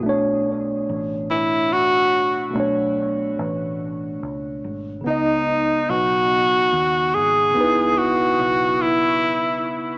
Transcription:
<<
  \new Staff \with { instrumentName = "Tenor saxophone" } { \time 6/8 \key b \dorian \tempo 4. = 48 r4. e'8 fis'4 | r2. | dis'4 fis'4. gis'8~ | gis'8 fis'4 e'4 r8 | }
  \new Staff \with { instrumentName = "Tine electric piano" } { \time 6/8 \key b \dorian <b, a d' cis''>2. | <b, a d' cis''>2. | <cis b dis' dis''>2. | <cis b dis' e' b'>2. | }
  \new Staff \with { instrumentName = "Fingered electric bass" } { \clef bass \time 6/8 \key b \dorian b,,4 a,,2 | b,,4 a,,4 cis,8 gis,,8 | cis,4 b,,4 dis,8 gis,,8 | cis,4 b,,2 | }
>>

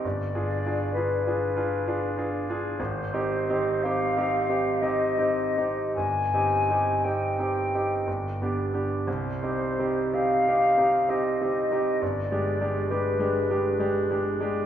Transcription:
<<
  \new Staff \with { instrumentName = "Flute" } { \time 3/4 \key c \minor \tempo 4 = 64 d''4 b'4. r8 | c''4 f''4 ees''4 | aes''4 g''4. r8 | c''4 f''4 ees''4 |
d''4 b'4. r8 | }
  \new Staff \with { instrumentName = "Grand piano" } { \time 3/4 \key c \minor \tuplet 3/2 { g,,8 <d' f' aes'>8 <d' f' aes'>8 <d' f' aes'>8 <d' f' aes'>8 <d' f' aes'>8 <d' f' aes'>8 <d' f' aes'>8 <d' f' aes'>8 } | \tuplet 3/2 { aes,,8 <c' ees' g'>8 <c' ees' g'>8 <c' ees' g'>8 <c' ees' g'>8 <c' ees' g'>8 <c' ees' g'>8 <c' ees' g'>8 <c' ees' g'>8 } | \tuplet 3/2 { g,,8 <c' ees' g'>8 <c' ees' g'>8 <c' ees' g'>8 <c' ees' g'>8 <c' ees' g'>8 g,,8 <b d' g'>8 <b d' g'>8 } | \tuplet 3/2 { c,8 <c' ees' g'>8 <c' ees' g'>8 <c' ees' g'>8 <c' ees' g'>8 <c' ees' g'>8 <c' ees' g'>8 <c' ees' g'>8 <c' ees' g'>8 } |
\tuplet 3/2 { g,,8 <aes d' g'>8 <aes d' g'>8 <aes d' g'>8 <aes d' g'>8 <aes d' g'>8 <aes d' g'>8 <aes d' g'>8 <aes d' g'>8 } | }
>>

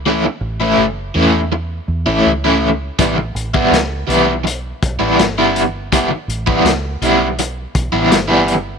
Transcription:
<<
  \new Staff \with { instrumentName = "Overdriven electric guitar" } { \time 4/4 \key e \dorian \tempo 4 = 82 <e a cis' e'>16 r8 <e a cis' e'>16 r8 <e a cis' e'>16 r4 <e a cis' e'>16 r16 <e a cis' e'>16 r8 | <e g b e'>16 r8 <e g b e'>16 r8 <e g b e'>16 r4 <e g b e'>16 r16 <e g b e'>16 r8 | <e g b e'>16 r8 <e g b e'>16 r8 <e g b e'>16 r4 <e g b e'>16 r16 <e g b e'>16 r8 | }
  \new Staff \with { instrumentName = "Fingered electric bass" } { \clef bass \time 4/4 \key e \dorian cis,8 a,,8 fis,,8 e,4 e,16 a,,16 cis,4 | a,,8 a,,8 cis,8 b,,4 b,,16 a,,16 g,,4~ | g,,8 a,,8 cis,8 b,,4 b,,16 a,,16 g,,4 | }
  \new DrumStaff \with { instrumentName = "Drums" } \drummode { \time 4/4 r4 r4 r4 r4 | <hh bd>8 hh16 bd16 <hh sn>8 hh8 hh8 <hh bd>8 <hh sn>8 hh8 | <hh bd>8 hh16 bd16 <hh sn>8 hh8 hh8 <hh bd>8 <hh sn>8 hh8 | }
>>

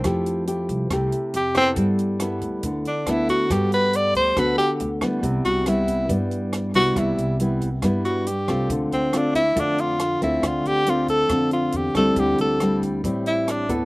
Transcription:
<<
  \new Staff \with { instrumentName = "Tenor saxophone" } { \time 4/4 \key c \lydian \tempo 4 = 138 r2. g'8 c'8 | r2 r8 d'8 e'8 fis'8 | g'8 b'8 d''8 c''8 b'8 g'8 r4 | r8 fis'8 e'4 r4. fis'8 |
e'4 r4. fis'8 g'4 | r8 c'8 d'8 e'8 d'8 f'4 e'8 | f'8 g'8 f'8 a'4 f'8 g'8 a'8 | g'8 a'4 r4 e'8 d'8 r8 | }
  \new Staff \with { instrumentName = "Nylon-string guitar" } { \time 4/4 \key c \lydian << { <a e' g'>4 <a e' g'>4 <a e' g'>4 r8 <b e' a'>8~ | <b e' a'>4 <b e' a'>2 <b e' a'>4 | <b fis' a'>2 <b fis' a'>4. <g b e'>8~ | <g b e'>4 <g b e'>4 <g b e'>4. <g b e'>8~ |
<g b e'>4 <g b e'>8 r8 <g b e'>4 r8 <a c' f'>8~ | <a c' f'>4 <a c' f'>8 r8 <a c' f'>4 r8 <a c' f'>8~ | <a c' f'>4 <a c' f'>4 <a c' f'>4. <g c' e'>8~ | <g c' e'>4 <g c' e'>4 <g c' e'>4. <b e' a'>8 | } \\ { f2 c2 | g2 d2 | g2 d2 | c2 g,2 |
c2 g,2 | d2 d2 | d2 d2 | d2 a,2 | } >> }
  \new Staff \with { instrumentName = "Upright bass" } { \clef bass \time 4/4 \key c \lydian f,4. c,8 c,8 r8 f,4 | g,4. d,8 d,8 r8 d,4 | g,4. d,8 d,8 r8 d,4 | c,8 c,4. g,4. c,8 |
c,8 c,4. g,4. c,8 | d,8 d,4. f,4. d,8 | d,8 d,4. f,4 e,8 d,8 | d,8 d,4. a,,4. d,8 | }
  \new DrumStaff \with { instrumentName = "Drums" } \drummode { \time 4/4 <hh bd ss>8 hh8 hh8 <hh bd>8 <hh bd ss>8 hh8 hh8 <hh bd ss>8 | <hh bd>8 hh8 <hh ss>8 <hh bd>8 <hh bd>8 hh8 <hh ss>8 <hh bd>8 | <hh bd ss>8 hh8 hh8 <hh bd>8 <hh bd ss>8 hh8 hh8 <hh bd ss>8 | <hh bd>8 hh8 <hh ss>8 <hh bd>8 <hh bd>8 hh8 <hh ss>8 <hh bd>8 |
<hh bd ss>8 hh8 hh8 <hh bd>8 <hh bd ss>8 hh8 hh8 <hh bd ss>8 | <hh bd>8 hh8 <hh ss>8 <hh bd>8 <hh bd>8 hh8 <hh ss>8 <hh bd>8 | <hh bd ss>8 hh8 hh8 <hh bd>8 <hh bd ss>8 hh8 hh8 <hh bd ss>8 | <hh bd>8 hh8 <hh ss>8 <hh bd>8 <hh bd>8 hh8 <hh ss>8 <hh bd>8 | }
>>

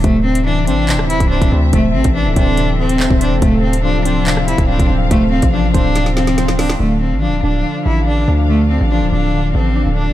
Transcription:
<<
  \new Staff \with { instrumentName = "String section" } { \time 4/4 \key d \minor \tempo 4 = 142 << { e''1~ | e''1 | f''1~ | f''1 |
f''1~ | f''1 | } \\ { <c' a'>1~ | <c' a'>1~ | <c' a'>1~ | <c' a'>1 |
<d' a'>1~ | <d' a'>1 | } >> }
  \new Staff \with { instrumentName = "Cello" } { \time 4/4 \key d \minor a8 c'8 d'8 d'4 e'8 d'8 r8 | a8 c'8 d'8 d'4 c'4 d'8 | a8 c'8 d'8 d'4 e'8 d'8 r8 | a8 c'8 d'8 d'4 c'4 d'8 |
a8 c'8 d'8 d'4 e'8 d'8 r8 | a8 c'8 d'8 d'4 c'4 d'8 | }
  \new Staff \with { instrumentName = "Synth keys" } { \clef bass \time 4/4 \key d \minor c8 c8 e8 c'8 c8 c8 c'8 c'8 | c8 c8 e8 c'8 c8 c8 c'8 c'8 | c8 c8 f8 c'8 c8 c8 c'8 c'8 | c8 c8 f8 c'8 c8 c8 c'8 c'8 |
d8 d8 f8 d'8 d8 d8 d'8 d'8 | d8 d8 f8 d'8 d8 d8 d'8 d'8 | }
  \new Staff \with { instrumentName = "808-style bass" } { \clef bass \time 4/4 \key d \minor d,,4. a,,8~ a,,32 d,,8~ d,,32 c,,8 d,,16 d,8 | d,,8 a,,16 a,,8 c,,16 d,,4.~ d,,16 d,,8 f,,16 | d,,2~ d,,8. d,,8 d,,16 d,,8 | d,,8. a,,8. d,,2~ d,,8 |
d,,8. a,,16. d,,16. d,,8 r8 a,,4 d,8~ | d,8. a,,8 c,,16 d,,4 a,,8. d,,8 f,,16 | }
  \new DrumStaff \with { instrumentName = "Drums" } \drummode { \time 4/4 <hh bd>8. hh16 r8 hh8 <hc hh>16 ss16 hh16 <hh bd>16 r16 <hh bd>8. | <hh bd>8. <hh bd>16 r8 <hh bd>8 hh8. hh16 hc16 bd16 hh8 | <hh bd>8. hh16 r8 hh8 <hc hh>16 ss16 hh16 <hh bd>16 r16 <hh bd>8. | <hh bd>8. <hh bd>16 r8 <hh bd>8 <hh sn>16 sn16 sn16 <hh sn>16 <hh sn>16 sn16 <hho sn>16 sn16 |
r4 r4 r4 r4 | r4 r4 r4 r4 | }
>>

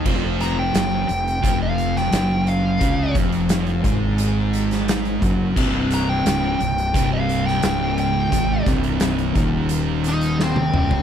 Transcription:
<<
  \new Staff \with { instrumentName = "Lead electric guitar" } { \time 4/4 \key c \minor \tempo 4 = 87 r8 ais''16 g''4. eis''8 g''8. eis''8~ | eis''8 r2. r8 | r8 bes''16 g''4. f''8 g''8. g''8~ | g''8 r2 ees'8 c'4 | }
  \new Staff \with { instrumentName = "Distorted electric guitar" } { \clef bass \time 4/4 \key c \minor <eis, eis>4 <fis, fis>8 eis,8 <eis, eis>4 <fis, fis>4 | <cis cis'>8 <eis, eis>4 <gis, gis>2 <fis, fis>8 | <c, c>4 <des, des>8 c,8 <c, c>4 <des, des>4 | <aes, aes>8 <c, c>4 <ees, ees>2 <des, des>8 | }
  \new Staff \with { instrumentName = "Distorted electric guitar" } { \clef bass \time 4/4 \key c \minor <eis, eis>4 <fis, fis>8 eis,8 <eis, eis>4 <fis, fis>4 | <cis cis'>8 <eis, eis>4 <gis, gis>2 <fis, fis>8 | <c, c>4 <des, des>8 c,8 <c, c>4 <des, des>4 | <aes, aes>8 <c, c>4 <ees, ees>2 <des, des>8 | }
  \new Staff \with { instrumentName = "Fingered electric bass" } { \clef bass \time 4/4 \key c \minor eis,,4 fis,,8 eis,,8 eis,,4 fis,,4 | cis,8 eis,,4 gis,,2 fis,,8 | c,,4 des,,8 c,,8 c,,4 des,,4 | aes,,8 c,,4 ees,,2 des,,8 | }
  \new DrumStaff \with { instrumentName = "Drums" } \drummode { \time 4/4 <cymc bd>8 <hh sn>8 <hh sn>8 hh16 hh16 <hh bd>8 hh16 sn16 <hh sn>8 hh8 | <hh bd>8 <hh bd>16 hh16 <hh sn>16 hh16 <hh bd>8 hh8 hh16 <hh sn>16 <hh sn>16 hh16 <hh bd>8 | <cymc bd>8 <hh sn>8 <hh sn>8 hh16 hh16 <hh bd>8 hh16 sn16 <hh sn>8 hh8 | <hh bd>8 <hh bd sn>16 hh16 <hh sn>16 hh16 <hh bd>8 hh8 hh16 hh16 sn16 tommh16 toml16 tomfh16 | }
>>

